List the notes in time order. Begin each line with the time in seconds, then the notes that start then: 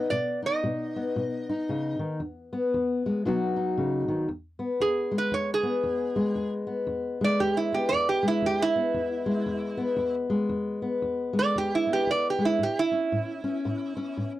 Already playing: B3
0.10 B2 D5
0.42 D#4 D#5
0.64 B2
0.96 B3
1.16 B2
1.49 D#4
1.69 C#3
1.99 D#3
2.20 E2
2.53 B3
2.74 E2
3.06 G#3
3.25 B2 F#3 B3 D#4 F#4
3.56 D#4
3.78 C#3
4.08 D#3
4.28 E2
4.59 B3
4.80 E2 G#4
5.11 G#3
5.18 B4
5.32 E2 C#5
5.54 G#4
5.63 B3
5.83 E2
6.16 G#3
6.35 E2
6.67 B3
6.87 E2
7.21 G#3 D5
7.40 E2 G4
7.57 E4
7.72 B3 G4
7.89 D5
7.93 E2
8.09 G4
8.23 G#3
8.28 E4
8.42 E2 G4
8.62 E4
8.76 B3
8.94 E2
9.26 G#3
9.46 E2
9.77 B3
9.96 E2
10.30 G#3
10.49 E2
10.82 B3
11.02 E2
11.33 G#3
11.39 D5
11.56 E2 G4
11.75 E4
11.87 B3
11.93 G4
12.07 E2 D5
12.30 G4
12.39 G#3
12.45 E4
12.59 A2
12.63 G4
12.79 E4
12.91 C#4
13.12 A2
13.44 C#4
13.65 A2
13.97 C#4
14.17 A2